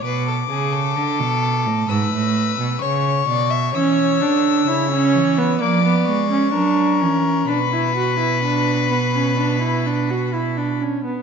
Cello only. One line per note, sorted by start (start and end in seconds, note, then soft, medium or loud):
0.04 0.49 B2 medium
0.50 0.98 C#3 medium
0.96 1.21 D3 medium
1.20 1.68 B2 medium
1.66 1.88 A2 medium
1.89 2.12 G#2 medium
2.12 2.58 A2 medium
2.59 2.81 B2 medium
2.82 3.27 C#3 medium
3.28 3.76 B2 medium
3.74 4.22 E3 medium
4.21 4.67 D3 medium
4.67 5.15 C#3 medium
5.14 5.60 E3 medium
5.60 6.06 F3 medium
6.07 6.53 G#3 medium
6.54 7.02 F#3 medium
7.01 7.47 E3 medium
7.48 10.75 B2 medium